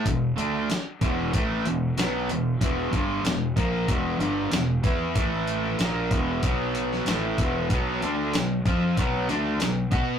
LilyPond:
<<
  \new Staff \with { instrumentName = "Distorted electric guitar" } { \clef bass \time 4/4 \key b \dorian \tempo 4 = 94 <e, b,>8 <d a d'>8 r8 <e, b, e>8 <a, e a>8 <e, b,>8 <b, fis b>8 <e, b,>8 | <e, b, e>8 <g, d g>8 <e, b,>8 <ais, f ais>8 <e, b, e>8 <g, d g>8 <e, b,>8 <e b e'>8 | <a, e a>4 <ais, f ais>8 <e, b, e>8 <b, fis b>4 <a, e a>8 <e, b, e>8 | <b, fis b>8 <d a d'>8 <b, fis>8 <f c' f'>8 <b, fis b>8 <d a d'>8 <b, fis>8 <b fis' b'>8 | }
  \new Staff \with { instrumentName = "Fingered electric bass" } { \clef bass \time 4/4 \key b \dorian e,,8 d,8 r8 e,,8 a,,8 e,,8 b,,8 e,,8 | e,,8 g,,8 e,,8 ais,,8 e,,8 g,,8 e,,8 e,8 | a,,4 ais,,8 e,,8 b,,4 a,,8 e,,8 | b,,8 d,8 b,,8 f,8 b,,8 d,8 b,,8 b,8 | }
  \new DrumStaff \with { instrumentName = "Drums" } \drummode { \time 4/4 <hh bd>8 hh8 <hh sn>8 <hh bd>8 <hh bd>8 hh8 <hh sn>8 hh8 | <hh bd>8 <hh bd>8 <hh sn>8 <hh bd>8 <hh bd>8 hh8 <hh sn>8 <hh bd>8 | <hh bd>8 hh8 <hh sn>8 <hh bd>8 <hh bd>8 hh16 sn16 <hh sn>8 <hh bd>8 | <hh bd>8 hh8 <hh sn>8 <hh bd>8 <hh bd>8 <hh sn>8 <hh sn>8 <hh bd>8 | }
>>